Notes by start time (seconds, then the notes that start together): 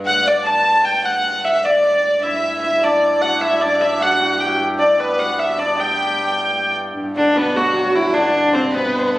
Already playing: G2
0.05 F#5
0.26 D5
0.46 A5
0.85 G5
1.05 F#5
1.45 E5
1.59 E5
1.64 D5
2.03 D5
2.23 G2 E4 E5
2.63 E4 E5
2.82 D4 D5
3.22 F#4 F#5
3.41 E4 E5
3.60 D4 D5
3.80 E4 E5
4.00 F#4 F#5
4.20 F#4
4.38 G4 G5
4.79 D4 D5
5.00 B3 B4
5.08 B3
5.18 F#4 F#5
5.38 E5
5.58 D4 D5
5.78 G4 G5
6.98 G2
7.16 D3 D4
7.35 B2 B3 B4
7.55 F#3 F#4
7.76 F#3
7.95 E3 E4
8.14 D3 D4
8.53 C3 C4 C5
8.72 B2 B3 B4
8.99 C5
9.07 B4
9.16 A4